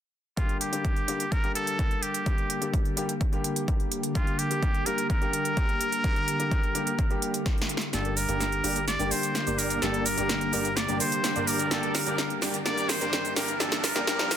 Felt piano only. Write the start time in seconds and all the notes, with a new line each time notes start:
0.37 D3 G3 A#3 G4
0.72 D3 G3 A#3 G4
1.08 D3 G3 A#3 G4
1.43 D3 G3 A#3 G4
2.26 D3 G3 A#3 G4
2.61 D3 G3 A#3 G4
2.96 D3 G3 A#3 G4
3.32 D3 G3 A#3 G4
3.68 A#3 G4
4.15 D3 G3 A#3 G4
4.50 D3 G3 A#3 G4
4.86 D3 G3 A#3 G4
5.21 D3 G3 A#3 G4
5.57 D3 G3 A#3 G4
6.04 D3 G3 A#3 G4
6.39 D3 G3 A#3 G4
6.75 D3 G3 A#3 G4
7.10 D3 G3 A#3 G4
7.93 D3 G3 A#3 G4
8.28 D3 G3 A#3 G4
8.63 D3 G3 A#3 G4
8.99 D3 G3 A#3 G4
9.34 D3 G3 A#3 G4
9.82 D3 G3 A#3 G4
10.17 D3 G3 A#3 G4
10.52 D3 G3 A#3 G4
10.88 D3 G3 A#3 G4
11.23 D3 G3 A#3 G4
11.71 D3 G3 A#3 G4
12.06 D3 G3 A#3 G4
12.41 D3 G3 A#3 G4
12.65 D3 G3 A#3 G4
13.00 D3 G3 A#3 G4
13.36 D3 G3 A#3 G4
13.60 D3 G3 A#3 G4
13.95 D3 G3 A#3 G4
14.07 D3 G3 A#3 G4